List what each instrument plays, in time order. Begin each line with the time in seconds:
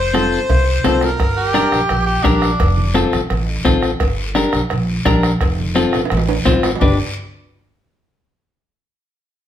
Already playing: upright bass F1, accordion C5
0.14 clean electric guitar C4 F4 A4, accordion C5, bombo rim, cowbell, high conga, short guiro
0.32 short guiro
0.50 upright bass C2, bombo low, cowbell, high timbale, long guiro
0.84 upright bass C2, clean electric guitar C4 F4 A4, accordion C5, bombo rim, cowbell, high conga, low conga, low timbale, short guiro
1.01 accordion A#4, bombo rim, low timbale, short guiro
1.20 upright bass G1, bombo low, bombo rim, cowbell, high conga, long guiro
1.37 tenor saxophone G4
1.54 clean electric guitar D4 G4 A#4, bombo rim, cowbell, high conga, short guiro
1.72 upright bass A#1, bombo rim, short guiro
1.89 upright bass A#1, bombo rim, cowbell, high conga, long guiro
2.07 tenor saxophone G4
2.24 upright bass A#1, tenor saxophone D4, clean electric guitar D4 G4 A#4, bombo low, bombo rim, cowbell, high conga, short guiro
2.42 bombo rim, short guiro
2.60 upright bass F1, bombo low, bombo rim, cowbell, high conga, long guiro
2.77 low conga
2.94 clean electric guitar C4 F4 A4, bombo rim, cowbell, high conga, short guiro
3.13 upright bass A1, bombo rim, short guiro
3.30 upright bass A1, bombo rim, cowbell, high conga, long guiro
3.65 upright bass A1, clean electric guitar C4 F4 A4, bombo low, bombo rim, cowbell, high conga, low conga, low timbale, short guiro
3.83 bombo rim, short guiro
4.00 upright bass G1, bombo low, bombo rim, cowbell, high conga, long guiro
4.35 clean electric guitar D4 G4 A#4, bombo rim, cowbell, high conga, short guiro
4.53 upright bass A#1, bombo rim, short guiro
4.70 upright bass A#1, bombo rim, cowbell, high conga, long guiro
5.05 upright bass A#1, clean electric guitar D4 G4 A#4, bombo low, bombo rim, cowbell, high conga, short guiro
5.23 bombo rim, short guiro
5.41 upright bass F1, bombo low, bombo rim, cowbell, high conga, long guiro
5.58 low conga
5.75 clean electric guitar C4 F4 A4, bombo rim, cowbell, high conga, short guiro
5.93 upright bass A1, bombo rim, high timbale, short guiro
6.05 high timbale
6.10 upright bass A1, bombo rim, cowbell, high conga, long guiro
6.17 low timbale
6.29 high timbale
6.45 upright bass A1, clean electric guitar C4 F4 C5, bombo low, bombo rim, cowbell, high conga, low conga, short guiro
6.52 low timbale
6.63 bombo rim, low timbale, short guiro
6.76 low timbale
6.80 upright bass G1, tenor saxophone D4, clean electric guitar D4 G4 B4, bombo low, low conga, low timbale, long guiro